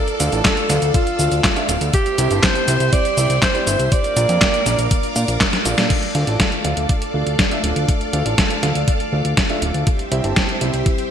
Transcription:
Already playing: alto saxophone A4, string machine A4 D5 F5 E6
0.08 closed hi-hat, cabasa
0.20 analog synth bass D2, grand piano D4 F4 A4 F5, closed hi-hat, cabasa
0.32 analog synth bass A1, grand piano D4 F4 A4 A5, closed hi-hat, cabasa
0.45 alto saxophone A4, kick, snare, clap, closed hi-hat, cabasa
0.57 closed hi-hat, cabasa
0.70 analog synth bass D2, grand piano D4 F4 A4 F5, snare, closed hi-hat, cabasa
0.82 analog synth bass D2, closed hi-hat, cabasa
0.94 alto saxophone F4, kick, closed hi-hat, cabasa
1.07 closed hi-hat, cabasa
1.19 analog synth bass D2, grand piano D4 F4 A4 F5, cabasa
1.32 analog synth bass D2, closed hi-hat, cabasa
1.44 kick, snare, clap, closed hi-hat, cabasa
1.56 grand piano D4 F4 A4 E5, closed hi-hat, cabasa
1.69 analog synth bass D1, grand piano D4 F4 A4 F5, closed hi-hat, cabasa
1.81 analog synth bass D2, closed hi-hat, cabasa
1.93 string machine G4 C5 E5 C6, alto saxophone G4, kick, closed hi-hat, cabasa
2.06 closed hi-hat, cabasa
2.18 analog synth bass C2, grand piano C4 E4 G4 E5, closed hi-hat, cabasa
2.31 analog synth bass G1, grand piano C4 E4 G4 A5, closed hi-hat, cabasa
2.43 alto saxophone C5, kick, snare, clap, closed hi-hat, cabasa
2.55 closed hi-hat, cabasa
2.68 analog synth bass C2, grand piano C4 E4 G4 E5, closed hi-hat, cabasa
2.80 analog synth bass C2, closed hi-hat, cabasa
2.93 alto saxophone D5, kick, closed hi-hat, cabasa
3.05 closed hi-hat, cabasa
3.17 analog synth bass C2, grand piano C4 E4 G4 E5, cabasa
3.30 analog synth bass C2, closed hi-hat, cabasa
3.42 alto saxophone C5, kick, snare, clap, closed hi-hat, cabasa
3.55 grand piano C4 E4 G4 D5, closed hi-hat, cabasa
3.67 analog synth bass G1, grand piano C4 E4 G4 E5, closed hi-hat, cabasa
3.79 analog synth bass C2, closed hi-hat, cabasa
3.92 string machine A#4 D5 F5 D6, alto saxophone D5, kick, closed hi-hat, cabasa
4.04 closed hi-hat, cabasa
4.17 analog synth bass A#1, grand piano A#3 D4 F4 D5, closed hi-hat, cabasa
4.29 analog synth bass F2, grand piano A#3 D4 F4 G5, closed hi-hat, cabasa
4.41 kick, snare, clap, closed hi-hat, cabasa
4.54 closed hi-hat, cabasa
4.66 analog synth bass A#1, grand piano A#3 D4 F4 D5, snare, closed hi-hat, cabasa
4.79 analog synth bass A#1, closed hi-hat, cabasa
4.91 kick, closed hi-hat, cabasa
5.03 closed hi-hat, cabasa
5.16 analog synth bass A#2, grand piano A#3 D4 F4 F5, closed hi-hat, cabasa
5.28 analog synth bass A#1, closed hi-hat, cabasa
5.41 kick, snare, clap, closed hi-hat, cabasa
5.53 snare, closed hi-hat, cabasa
5.65 analog synth bass A#1, grand piano D4 F4 A4 F5, closed hi-hat, cabasa
5.78 analog synth bass A#2, snare, closed hi-hat, cabasa
5.90 string machine A4 D5 F5 D6, kick, closed hi-hat, crash
6.03 closed hi-hat
6.15 analog synth bass D2, grand piano D4 F4 A4 F5, closed hi-hat
6.27 analog synth bass A1, grand piano D4 F4 A4 A5, closed hi-hat
6.40 kick, snare, closed hi-hat
6.52 closed hi-hat
6.65 analog synth bass D2, grand piano D4 F4 A4 F5, closed hi-hat
6.77 analog synth bass D2, closed hi-hat
6.89 kick, closed hi-hat
7.02 closed hi-hat
7.14 analog synth bass D2, grand piano D4 F4 A4 F5
7.27 analog synth bass D2, closed hi-hat
7.39 kick, snare, closed hi-hat
7.51 grand piano D4 F4 A4 E5, closed hi-hat
7.64 analog synth bass D1, grand piano D4 F4 A4 F5, closed hi-hat
7.76 analog synth bass D2, closed hi-hat
7.89 kick, closed hi-hat
8.01 closed hi-hat
8.13 analog synth bass D2, grand piano D4 F4 A4 F5, closed hi-hat
8.26 analog synth bass A1, grand piano D4 F4 A4 A5, closed hi-hat
8.38 kick, snare, closed hi-hat
8.50 closed hi-hat
8.63 analog synth bass D2, grand piano D4 F4 A4 F5, snare, closed hi-hat
8.75 analog synth bass D2, closed hi-hat
8.88 kick, closed hi-hat
9.00 closed hi-hat
9.12 analog synth bass D2, grand piano D4 F4 A4 F5
9.25 analog synth bass D2, closed hi-hat
9.37 kick, snare, closed hi-hat
9.50 grand piano D4 F4 A4 E5, closed hi-hat
9.62 analog synth bass D1, grand piano D4 F4 A4 F5, closed hi-hat
9.74 analog synth bass D2, closed hi-hat
9.87 string machine G4 C5 E5 C6, kick, closed hi-hat
9.99 closed hi-hat
10.12 analog synth bass C2, grand piano C4 E4 G4 E5, closed hi-hat
10.24 analog synth bass G1, grand piano C4 E4 G4 A5, closed hi-hat
10.36 kick, snare, closed hi-hat
10.49 closed hi-hat
10.61 analog synth bass C2, grand piano C4 E4 G4 E5, closed hi-hat
10.74 analog synth bass C2, closed hi-hat
10.86 kick, closed hi-hat
10.98 closed hi-hat

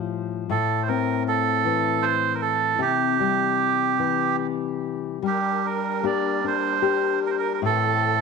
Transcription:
Already playing: nylon-string guitar A2 F3 G3
0.49 nylon-string guitar A2, melodica A4
0.83 melodica C5
0.88 nylon-string guitar C4, melodica A#4
1.28 melodica A4
1.65 nylon-string guitar E3
2.02 melodica C5
2.35 melodica A#4
2.41 melodica A4
2.79 nylon-string guitar C3, melodica G4
3.20 nylon-string guitar G3
3.99 nylon-string guitar E3
5.22 nylon-string guitar G3, accordion G3 D4 A#4
5.27 melodica G4
5.66 melodica A#4
6.03 nylon-string guitar A#3 D4 G4, melodica D5
6.44 nylon-string guitar D4, melodica C5
6.82 nylon-string guitar G4
7.26 melodica A#4
7.31 melodica C5
7.39 melodica A#4
7.54 melodica A#4
7.62 nylon-string guitar A2, accordion E3 C4 A4, melodica A4

